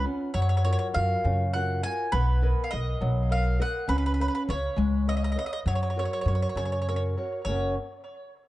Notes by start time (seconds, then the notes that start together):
0.04 B3 C#4 F4
0.34 F#2 F#3 C#5
0.42 C#5
0.49 C#5
0.57 C#5
0.64 F4 F#4 A#4 C#5
0.73 C#5
0.79 C#5
0.93 F#2 F4 F#4 A#4 F5
1.24 F#2 C#3
1.54 F4 F#4 A#4 F#5
1.83 F4 F#4 A#4 G#5
2.12 B1 B3 B4
2.42 A#4 B4 D#5
2.64 F5
2.71 B1 A#4 B4 D#5
3.01 B1 F#3
3.31 A#4 B4 D#5 F5
3.59 A#4 B4 D#5 F#5
3.88 C#2 C#4 B4
3.98 B4
4.06 B4
4.14 B4
4.20 B4 C#5 F5
4.28 B4
4.35 B4
4.48 C#2 B4 C#5 F5
4.76 C#2 G#3
5.08 B4 C#5 D#5 F5
5.17 D#5
5.24 D#5
5.32 D#5
5.36 B4 C#5 D#5 F5
5.46 D#5
5.53 D#5
5.66 F#2 F#3 C#5
5.75 C#5
5.83 C#5
5.90 C#5
5.96 F#4 A#4 C#5
6.05 C#5
6.13 C#5
6.21 C#5
6.25 F#2 F#4 A#4 C#5
6.35 C#5
6.42 C#5
6.49 C#5
6.55 F#2 C#3 C#5
6.65 C#5
6.72 C#5
6.82 C#5
6.88 F#4 A#4 C#5
6.96 C#5
7.18 F#4 A#4 C#5
7.45 F#1 F#2 C#3 F#3 A#3 C#4 A#4 C#5